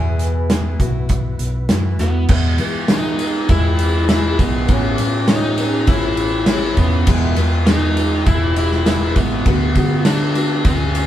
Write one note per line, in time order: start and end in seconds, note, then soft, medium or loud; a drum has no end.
0.00 0.50 E2 loud
0.00 0.76 E2 loud
0.00 0.50 B2 medium
0.00 0.48 E3 loud
0.00 0.49 B3 medium
0.00 0.80 B3 medium
0.00 0.50 E4 loud
0.00 0.80 E4 medium
0.00 0.51 G#4 loud
0.00 0.80 G#4 medium
0.00 0.80 B4 medium
0.19 closed hi-hat medium
0.50 0.80 E3 medium
0.50 0.80 B3 medium
0.50 0.80 E4 medium
0.50 0.79 G#4 medium
0.50 snare loud
0.50 closed hi-hat loud
0.79 1.36 B1 medium
0.79 2.29 B3 medium
0.79 1.69 B3 soft
0.79 2.29 E4 medium
0.79 1.70 E4 medium
0.79 1.70 F#4 medium
0.79 2.29 F#4 medium
0.79 2.29 B4 medium
0.79 kick medium
0.79 closed hi-hat medium
1.09 kick loud
1.09 closed hi-hat medium
1.39 1.68 B1 medium
1.39 closed hi-hat medium
1.69 1.96 F#2 medium
1.69 1.99 E3 medium
1.69 2.00 B3 medium
1.69 1.99 E4 medium
1.69 1.98 F#4 medium
1.69 snare loud
1.69 closed hi-hat medium
1.99 2.26 E2 medium
1.99 2.29 B3 medium
1.99 2.30 E4 soft
1.99 2.30 F#4 medium
1.99 snare soft
1.99 closed hi-hat medium
2.29 2.58 E2 loud
2.29 2.59 E2 medium
2.29 2.60 B2 medium
2.29 2.60 E3 medium
2.29 2.59 G#3 medium
2.29 2.59 B3 medium
2.29 2.58 E4 loud
2.29 kick loud
2.29 crash loud
2.29 tambourine soft
2.58 3.45 E3 medium
2.58 2.89 E3 soft
2.58 2.89 G#3 soft
2.58 2.90 B3 medium
2.58 2.89 E4 soft
2.58 ride medium
2.88 3.20 E2 medium
2.88 3.20 B2 medium
2.88 3.20 E3 medium
2.88 3.20 G#3 medium
2.88 3.20 B3 medium
2.88 snare loud
2.88 ride loud
2.88 tambourine loud
2.93 3.50 D#4 loud
3.19 3.49 G#3 soft
3.19 3.50 B3 medium
3.19 ride medium
3.19 tambourine medium
3.23 3.48 E3 soft
3.49 4.35 E2 loud
3.49 4.10 E3 medium
3.49 4.09 G#3 medium
3.49 4.10 B3 medium
3.49 4.10 E4 medium
3.49 kick loud
3.49 ride loud
3.49 tambourine medium
3.79 ride medium
3.79 tambourine soft
4.09 4.39 E2 medium
4.09 4.39 B2 medium
4.09 4.40 E3 medium
4.09 4.40 G#3 medium
4.09 4.40 B3 medium
4.09 4.39 E4 medium
4.09 snare loud
4.09 ride loud
4.09 tambourine loud
4.39 4.67 B1 medium
4.39 4.68 E3 soft
4.39 4.69 G#3 soft
4.39 4.69 B3 medium
4.39 4.69 E4 soft
4.39 kick medium
4.39 ride medium
4.39 tambourine medium
4.68 4.97 A1 loud
4.68 4.99 A2 medium
4.68 4.99 E3 medium
4.68 4.99 B3 medium
4.68 4.99 C#4 loud
4.68 4.97 E4 medium
4.68 kick loud
4.68 ride loud
4.68 tambourine soft
4.98 5.84 A2 medium
4.98 5.29 B3 soft
4.98 5.29 C#4 soft
4.98 5.28 E4 soft
4.98 ride medium
4.98 tambourine medium
5.28 5.58 A2 medium
5.28 5.59 E3 medium
5.28 5.59 B3 medium
5.28 5.58 C#4 medium
5.28 5.88 D#4 loud
5.28 snare loud
5.28 ride loud
5.28 tambourine medium
5.58 5.87 B3 medium
5.58 5.88 C#4 medium
5.58 ride medium
5.58 tambourine medium
5.87 6.73 A1 medium
5.87 6.46 E3 medium
5.87 6.47 B3 medium
5.87 6.47 C#4 medium
5.87 6.47 E4 medium
5.87 kick loud
5.87 ride loud
5.87 tambourine medium
6.17 ride medium
6.17 tambourine soft
6.46 6.77 A2 medium
6.46 6.77 E3 medium
6.46 6.78 B3 medium
6.46 6.77 C#4 medium
6.46 6.76 E4 medium
6.46 snare loud
6.46 ride loud
6.46 tambourine medium
6.77 7.05 E2 medium
6.77 7.07 B3 soft
6.77 7.08 C#4 medium
6.77 7.07 E4 medium
6.77 kick medium
6.77 ride medium
6.77 tambourine medium
7.07 7.35 E1 loud
7.07 7.37 E2 medium
7.07 7.37 B2 medium
7.07 7.37 E3 loud
7.07 7.37 G#3 loud
7.07 7.36 B3 medium
7.07 7.35 E4 loud
7.07 kick loud
7.07 tambourine soft
7.07 crash loud
7.36 8.23 E2 medium
7.36 7.67 E3 soft
7.36 7.67 G#3 medium
7.36 7.67 B3 medium
7.36 7.67 E4 medium
7.36 ride medium
7.36 tambourine medium
7.66 7.97 E2 medium
7.66 7.97 B2 medium
7.66 7.97 E3 medium
7.66 7.97 G#3 medium
7.66 7.96 B3 medium
7.66 8.26 D#4 loud
7.66 snare loud
7.66 ride loud
7.66 tambourine medium
7.97 8.24 E3 medium
7.97 8.25 G#3 medium
7.97 8.26 B3 soft
7.97 ride medium
7.97 tambourine medium
8.25 9.12 E1 loud
8.25 8.85 E3 medium
8.25 8.85 G#3 medium
8.25 8.86 B3 medium
8.25 8.86 E4 medium
8.25 kick loud
8.25 ride loud
8.25 tambourine medium
8.56 8.87 E4 loud
8.56 ride medium
8.72 snare soft
8.86 9.16 E2 medium
8.86 9.16 B2 medium
8.86 9.16 E3 medium
8.86 9.16 G#3 medium
8.86 9.15 B3 medium
8.86 9.15 E4 medium
8.86 snare loud
8.86 ride loud
8.86 tambourine medium
9.16 9.44 A1 medium
9.16 9.46 E3 soft
9.16 9.46 G#3 soft
9.16 9.46 B3 soft
9.16 9.46 E4 medium
9.16 kick medium
9.16 ride medium
9.16 tambourine medium
9.45 9.74 D2 loud
9.45 9.76 D3 medium
9.45 9.76 A3 medium
9.45 9.76 B3 loud
9.45 9.75 F#4 medium
9.45 kick loud
9.45 ride loud
9.45 tambourine soft
9.75 10.61 D3 medium
9.75 10.06 A3 soft
9.75 10.07 B3 soft
9.75 10.06 F#4 medium
9.75 kick medium
9.75 ride medium
9.75 tambourine medium
10.05 10.36 D3 medium
10.05 10.36 A3 medium
10.05 10.37 B3 medium
10.05 10.66 D4 loud
10.05 10.35 F#4 medium
10.05 snare loud
10.05 ride loud
10.05 tambourine medium
10.35 10.66 A3 medium
10.35 10.66 B3 medium
10.35 10.66 F#4 medium
10.35 ride medium
10.35 tambourine medium
10.65 11.07 D2 medium
10.65 11.07 D3 medium
10.65 11.07 A3 medium
10.65 11.07 B3 medium
10.65 11.07 C#4 loud
10.65 11.07 F#4 medium
10.65 kick loud
10.65 ride loud
10.65 tambourine medium
10.95 ride medium
10.95 tambourine soft